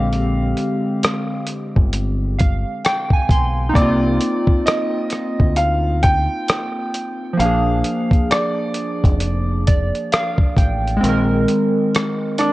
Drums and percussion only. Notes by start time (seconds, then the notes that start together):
0.13 closed hi-hat
0.57 closed hi-hat
1.03 cross-stick, closed hi-hat
1.47 closed hi-hat
1.76 kick
1.93 closed hi-hat
2.39 kick, closed hi-hat
2.85 cross-stick, closed hi-hat
3.10 kick
3.29 kick, closed hi-hat
3.75 kick, closed hi-hat
4.21 closed hi-hat
4.47 kick
4.67 cross-stick, closed hi-hat
5.10 cross-stick, closed hi-hat
5.40 kick
5.56 closed hi-hat
6.03 kick, closed hi-hat
6.48 cross-stick, closed hi-hat
6.94 closed hi-hat
7.40 closed hi-hat
7.84 closed hi-hat
8.11 kick, closed hi-hat
8.31 cross-stick, closed hi-hat
8.74 closed hi-hat
9.04 kick, closed hi-hat
9.20 closed hi-hat
9.67 kick, closed hi-hat
9.95 closed hi-hat
10.12 cross-stick, closed hi-hat
10.38 kick
10.57 kick, closed hi-hat
10.87 closed hi-hat
11.04 closed hi-hat
11.48 closed hi-hat
11.94 cross-stick, closed hi-hat
12.38 cross-stick, closed hi-hat